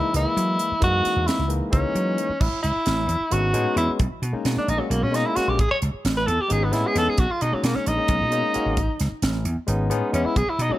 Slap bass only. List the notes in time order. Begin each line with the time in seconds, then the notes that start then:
0.14 C#2
0.37 F#3
0.72 muted slap bass stroke
0.82 F#2
1.06 muted slap bass stroke
1.16 E2
1.39 C#2
1.73 C#2
1.95 F#3
2.29 muted slap bass stroke
2.40 A1
2.53 muted slap bass stroke
2.64 C#2
2.76 muted slap bass stroke
2.87 A1
3.09 E2
3.20 muted slap bass stroke
3.32 G#1
3.54 A2
3.76 E2
3.88 muted slap bass stroke
3.99 B1
4.11 muted slap bass stroke
4.22 B2
4.33 muted slap bass stroke
4.45 B2
4.57 muted slap bass stroke
4.68 A#1
4.90 B1
5.02 B2
5.37 muted slap bass stroke
5.48 A#1
5.59 A1
5.71 muted slap bass stroke
5.82 C#2
5.94 muted slap bass stroke
6.05 A1
6.27 E2
6.38 muted slap bass stroke
6.51 G#1
6.72 A2
6.95 E2
7.08 muted slap bass stroke
7.18 B1
7.30 muted slap bass stroke
7.42 B2
7.53 muted slap bass stroke
7.63 B2
7.76 muted slap bass stroke
7.87 A#1
8.08 B1
8.20 B2
8.56 muted slap bass stroke
8.66 G#1
8.77 A1
8.89 muted slap bass stroke
9.00 C#2
9.12 muted slap bass stroke
9.22 A1
9.45 E2
9.57 muted slap bass stroke
9.68 G#1
9.90 A2
10.13 E2
10.25 muted slap bass stroke
10.36 B1
10.47 muted slap bass stroke
10.59 B2
10.71 muted slap bass stroke